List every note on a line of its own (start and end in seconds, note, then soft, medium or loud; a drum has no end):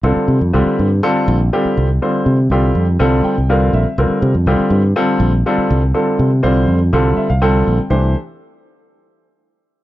0.03 0.14 C2 medium
0.03 0.38 D3 medium
0.03 0.38 G3 medium
0.03 0.38 C4 medium
0.03 0.38 F4 medium
0.03 0.38 A4 medium
0.16 muted fingered electric bass stroke soft
0.28 0.39 C3 medium
0.41 0.51 F2 medium
0.53 0.65 C2 medium
0.53 0.87 D3 medium
0.53 0.87 G3 medium
0.53 0.87 C4 medium
0.53 0.87 F4 medium
0.53 0.87 G4 medium
0.66 muted fingered electric bass stroke soft
0.79 1.00 G2 medium
1.03 1.37 D3 medium
1.03 1.37 G3 medium
1.03 1.37 C4 medium
1.03 1.37 F4 medium
1.03 1.37 A4 loud
1.28 1.49 A#1 loud
1.53 1.86 D3 medium
1.53 1.86 G3 medium
1.53 1.86 C4 medium
1.53 1.86 F4 medium
1.53 1.86 G4 medium
1.65 muted fingered electric bass stroke soft
1.77 1.98 C2 medium
2.02 2.36 D3 medium
2.02 2.35 G3 medium
2.02 2.36 C4 medium
2.02 2.36 F4 medium
2.02 2.36 C5 medium
2.26 2.47 C3 medium
2.50 2.71 C2 medium
2.50 2.85 D3 medium
2.50 2.85 G3 medium
2.50 2.85 C4 medium
2.50 2.85 F4 medium
2.50 2.85 G4 medium
2.75 2.96 F2 medium
2.99 3.21 C2 medium
2.99 3.34 D3 medium
2.99 3.33 G3 medium
2.99 3.34 C4 medium
2.99 3.34 F4 medium
2.99 3.34 A4 medium
3.24 3.47 G5 medium
3.24 muted fingered electric bass stroke soft
3.38 3.69 C2 medium
3.49 3.83 D3 medium
3.49 3.83 G3 medium
3.49 3.83 C4 medium
3.49 3.83 F4 medium
3.49 3.83 A#4 medium
3.49 3.72 F5 medium
3.73 3.84 A#1 medium
3.73 3.97 E5 medium
3.98 4.09 C2 medium
3.98 4.32 D3 medium
3.98 4.32 G3 medium
3.98 4.32 C4 medium
3.98 4.32 F4 medium
3.98 4.33 A#4 medium
4.10 muted fingered electric bass stroke soft
4.22 4.33 C3 medium
4.35 4.45 F2 medium
4.46 4.58 C2 medium
4.46 4.81 D3 medium
4.46 4.81 G3 medium
4.46 4.81 C4 medium
4.46 4.81 F4 medium
4.46 4.81 G4 medium
4.60 muted fingered electric bass stroke soft
4.70 4.92 G2 medium
4.96 5.30 D3 medium
4.96 5.30 G3 medium
4.96 5.30 C4 medium
4.96 5.30 F4 medium
4.96 5.31 A4 medium
5.20 5.42 A#1 loud
5.46 5.80 D3 medium
5.46 5.80 G3 medium
5.46 5.80 C4 medium
5.46 5.80 F4 medium
5.46 5.80 A4 medium
5.58 muted fingered electric bass stroke soft
5.70 5.92 C2 medium
5.94 6.29 D3 medium
5.94 6.28 G3 medium
5.94 6.29 C4 medium
5.94 6.29 F4 medium
5.94 6.29 A4 medium
6.19 6.41 C3 medium
6.43 6.65 C2 medium
6.43 6.78 D3 medium
6.43 6.78 G3 medium
6.43 6.77 C4 medium
6.43 6.78 F4 medium
6.43 6.78 C5 medium
6.68 6.90 F2 medium
6.93 7.14 C2 medium
6.93 7.27 D3 medium
6.93 7.27 G3 medium
6.93 7.27 C4 medium
6.93 7.27 F4 medium
6.93 7.27 A4 medium
7.17 7.29 E5 medium
7.17 muted fingered electric bass stroke soft
7.30 7.62 C2 medium
7.30 7.41 F5 medium
7.42 7.76 D3 medium
7.42 7.77 G3 medium
7.42 7.76 C4 medium
7.42 7.77 F4 medium
7.42 7.76 A4 medium
7.42 7.88 G5 medium
7.67 7.78 A#1 medium
7.90 8.14 C2 medium
7.90 8.14 E3 medium
7.90 8.14 A3 medium
7.90 8.14 D4 medium
7.90 8.14 G4 medium
7.90 8.14 C5 medium